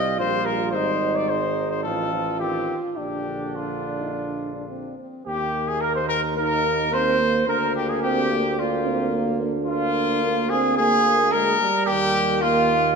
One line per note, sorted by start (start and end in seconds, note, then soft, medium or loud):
0.00 0.20 C2 medium
0.00 0.18 G3 medium
0.00 0.77 F4 medium
0.00 0.19 D#5 loud
0.18 0.75 A#1 medium
0.18 1.31 G3 medium
0.18 0.76 F4 medium
0.18 0.47 C5 loud
0.45 0.70 A#4 loud
0.71 1.86 G#1 medium
0.71 1.57 D#4 loud
0.71 1.17 C5 loud
0.75 1.29 D#4 medium
1.16 1.30 D5 medium
1.29 1.86 G#3 medium
1.29 1.86 D#4 medium
1.29 1.70 C5 medium
1.70 1.83 C5 medium
1.83 2.69 A1 medium
1.83 2.12 F3 medium
1.83 2.42 F4 medium
1.83 3.00 F4 medium
1.83 2.39 A4 loud
2.12 2.25 F3 medium
2.39 2.76 D#3 medium
2.39 2.77 C4 medium
2.39 2.76 G4 medium
2.95 4.94 A#1 medium
2.95 4.94 D3 medium
2.95 4.94 D4 medium
2.95 3.50 D4 medium
2.95 3.57 G4 medium
3.55 3.96 D4 medium
3.55 4.98 F4 medium
3.99 4.14 D#4 medium
4.13 4.55 D4 medium
4.56 4.69 D4 medium
4.70 4.97 C4 medium
4.99 5.25 C4 medium
5.25 7.43 D#2 medium
5.25 6.33 A#3 medium
5.25 5.69 G4 loud
5.25 5.69 G4 medium
5.67 5.82 G#4 loud
5.67 5.81 G#4 medium
5.81 5.94 A#4 medium
5.81 5.95 A#4 loud
5.95 6.08 C5 medium
5.95 6.11 C5 medium
6.08 6.21 A#4 loud
6.08 6.36 A#4 medium
6.36 7.45 A#3 medium
6.36 6.88 D#4 medium
6.36 6.91 A#4 loud
6.36 6.95 A#4 loud
6.92 7.20 C4 medium
6.92 7.47 C5 loud
6.92 7.48 C5 loud
7.19 7.49 A#3 medium
7.47 11.56 D2 medium
7.47 8.56 A#3 medium
7.47 8.03 D4 medium
7.47 7.75 A#4 medium
7.47 7.75 A#4 loud
7.75 7.91 G4 loud
7.75 7.89 G4 medium
7.89 8.02 G#4 medium
8.02 8.30 C4 medium
8.02 8.60 G4 loud
8.02 8.57 G4 medium
8.31 8.43 A#3 medium
8.58 9.53 A#3 medium
8.58 8.88 D4 medium
8.58 9.40 F4 medium
8.58 9.41 F4 medium
8.86 9.12 C4 medium
9.13 9.43 A#3 medium
9.42 10.24 D4 loud
9.66 10.76 A#3 loud
9.66 10.51 F4 loud
9.66 10.46 F4 loud
10.25 10.51 A#3 medium
10.49 10.80 C4 medium
10.49 10.76 G#4 loud
10.49 10.77 G#4 loud
10.77 11.33 A#3 medium
10.77 11.33 G#4 loud
10.77 11.35 G#4 loud
11.31 11.60 G#3 medium
11.31 11.68 A#3 medium
11.31 11.85 A#4 loud
11.31 11.88 A#4 loud
11.61 12.41 G3 loud
11.85 12.95 D#2 medium
11.85 12.93 A#3 loud
11.85 12.43 G4 loud
11.85 12.40 G4 loud
12.41 12.78 A#3 loud
12.41 12.95 F4 loud